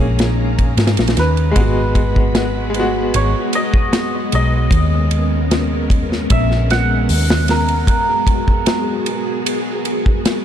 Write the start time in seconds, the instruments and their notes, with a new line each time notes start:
Already playing: fingered electric bass A#1, string machine G#3 C#4 D#4 A#5, upright piano A#3 C#4 G#4, santur D#5
0.19 snare, ride
0.59 kick, ride
0.77 fingered electric bass G#2, snare, ride
0.87 snare, ride
0.97 fingered electric bass A#1, snare, ride
1.08 snare, ride
1.17 fingered electric bass D#2, santur B4, snare, ride
1.37 ride
1.51 upright piano G#3
1.56 fingered electric bass G#1, string machine B3 F#4 B5, upright piano B3, kick, ride
1.61 upright piano F#4
1.95 kick, ride
2.16 kick
2.35 snare, ride
2.70 upright piano G#3
2.74 upright piano B3, ride
2.79 upright piano F#4
3.14 fingered electric bass G#1, santur C#5, ride
3.53 santur D#5, ride
3.74 kick
3.93 snare, ride
4.32 fingered electric bass B1, santur D#5, ride
4.71 fingered electric bass D#2, string machine C#4 A#4, kick, ride
5.11 ride
5.51 snare, ride
5.90 kick, ride
6.12 snare
6.30 fingered electric bass A#1, santur E5, kick, ride
6.51 snare
6.70 santur F#5, snare, ride
7.09 fingered electric bass D#2, open hi-hat
7.30 snare
7.48 santur A#4, snare, ride
7.68 ride
7.87 string machine F#4 G#4, kick, ride
8.27 kick, ride
8.48 kick
8.66 snare, ride
9.06 ride
9.46 ride
9.85 ride
10.06 kick
10.25 snare, ride